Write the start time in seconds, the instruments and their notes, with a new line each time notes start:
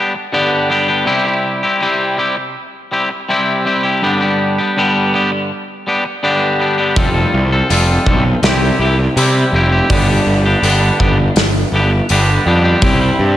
Already playing: clean electric guitar G3 B3 D4
0.00 clean electric guitar G4
0.15 muted clean electric guitar stroke
0.32 clean electric guitar G2 D3 G3 B3 D4 G4
0.70 clean electric guitar G3 B3 D4 G4
0.88 clean electric guitar G3 B3 D4 G4
1.05 clean electric guitar C3 G3 C4 E4 G4
1.25 clean electric guitar C4 E4 G4
1.63 clean electric guitar C4 E4 G4
1.81 clean electric guitar C3 G3 C4 E4 G4
2.17 clean electric guitar G3 C4 E4 G4
2.37 muted clean electric guitar stroke
2.91 clean electric guitar G3 C4 E4 G4
3.10 muted clean electric guitar stroke
3.29 clean electric guitar C3 G3 C4 E4 G4
3.65 clean electric guitar G3 C4 E4 G4
3.83 clean electric guitar C4 E4 G4
4.02 clean electric guitar G2 D3 G3 B3 D4 G4
4.21 clean electric guitar G3 B3 D4 G4
4.58 clean electric guitar G3 B3 D4 G4
4.77 clean electric guitar G2 D3 G3 B3 D4 G4
5.13 clean electric guitar G3 B3 D4 G4
5.32 muted clean electric guitar stroke
5.87 clean electric guitar G3 B3 D4 G4
6.05 muted clean electric guitar stroke
6.23 clean electric guitar G2 D3 G3 B3 D4 G4
6.59 clean electric guitar G3 B3 D4 G4
6.78 clean electric guitar G3 B3 D4 G4
6.96 picked electric bass F1, clean electric guitar F3 G3 C4 F4 A4, kick, open hi-hat
7.14 clean electric guitar C4 F4 A4
7.34 picked electric bass C2
7.52 clean electric guitar C4 F4 A4
7.70 picked electric bass F1, clean electric guitar F3 G3 C4 F4 A4, open hi-hat
8.06 picked electric bass B1, clean electric guitar G3 C4 F4 A4, kick
8.25 muted clean electric guitar stroke
8.42 picked electric bass C2, clean electric guitar C3 G3 C4 E4 G4, snare, open hi-hat
8.79 picked electric bass C2, clean electric guitar G3 C4 E4 G4
8.99 muted clean electric guitar stroke
9.16 picked electric bass C3, clean electric guitar C3 G3 C4 E4 G4, open hi-hat
9.53 picked electric bass F1, clean electric guitar G3 C4 E4 G4
9.72 clean electric guitar C4 E4 G4
9.90 picked electric bass G1, clean electric guitar G2 D3 G3 B3 D4 G4, kick, open hi-hat
10.09 clean electric guitar G3 B3 D4 G4
10.27 picked electric bass G1
10.45 clean electric guitar G3 B3 D4 G4
10.62 picked electric bass G1, clean electric guitar G2 D3 G3 B3 D4 G4, open hi-hat
11.00 picked electric bass G1, clean electric guitar G3 B3 D4 G4, kick
11.19 muted clean electric guitar stroke
11.36 picked electric bass G1, snare, open hi-hat
11.72 picked electric bass G1, clean electric guitar G3 B3 D4 G4
11.92 muted clean electric guitar stroke
12.09 picked electric bass G1, clean electric guitar G2 D3 G3 B3 D4 G4, open hi-hat
12.46 picked electric bass F2, clean electric guitar G3 B3 D4 G4
12.64 clean electric guitar G3 B3 D4 G4
12.82 picked electric bass C2, clean electric guitar C3 G3 C4 E4 G4, kick, open hi-hat
13.01 clean electric guitar C4 E4 G4
13.19 picked electric bass G2